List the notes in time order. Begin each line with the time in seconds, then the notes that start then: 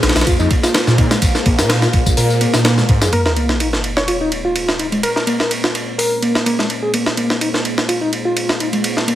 Already playing: A#3 G#4 C5 F5
0.03 A#1, snare, ride
0.09 snare, ride
0.16 A#1, snare, ride, tambourine
0.21 snare, ride
0.27 F2 F4, kick, ride, tambourine
0.40 F2 D#4, tambourine
0.51 kick, ride
0.63 F4, snare, tambourine
0.74 snare, ride, tambourine
0.87 A#2, snare, tambourine
0.98 D#4, kick, ride
1.11 G#3, snare, tambourine
1.22 A#1, kick, ride, tambourine
1.35 snare, tambourine
1.46 A#1 A#3, kick, ride
1.59 A#2 A#4, snare, tambourine
1.70 snare, ride, tambourine
1.82 F4, snare, tambourine
1.93 A#1, kick, ride
2.06 A#1, kick, tambourine
2.17 A#2 A#4, open hi-hat, tambourine
2.30 tambourine
2.41 A#3, ride
2.54 A#2, snare, tambourine
2.65 A#3, snare, ride, tambourine
2.78 G#3, snare, tambourine
2.89 G#2, kick, ride
3.02 F2 G#4, snare, tambourine
3.12 A#3 G#4 A#4 C5 C#5, ride, sub drop
3.26 A#4, snare
3.36 A#3, ride
3.49 snare
3.60 D#4, ride
3.73 snare
3.84 ride
3.97 C#5, snare
4.08 F4, ride
4.21 D#4
4.32 ride
4.45 F4
4.56 ride
4.69 snare
4.79 D#4, ride
4.92 G#3, ride
5.03 A#4, ride
5.16 A#4, snare
5.27 A#3, ride
5.40 A#4, snare
5.51 ride
5.64 F4, snare
5.75 ride
5.98 A#4, open hi-hat
6.22 A#3, ride
6.35 snare
6.46 A#3, ride
6.59 G#3, snare
6.70 ride
6.82 G#4
6.93 A#3 F5, ride
7.06 snare
7.17 A#3, ride
7.30 snare
7.41 D#4, ride
7.54 snare
7.65 ride
7.78 snare
7.89 F4, ride
8.01 D#4
8.13 ride
8.25 F4
8.37 ride
8.49 snare
8.60 D#4, ride
8.73 G#3, ride
8.84 ride
8.97 snare
9.08 A#3, ride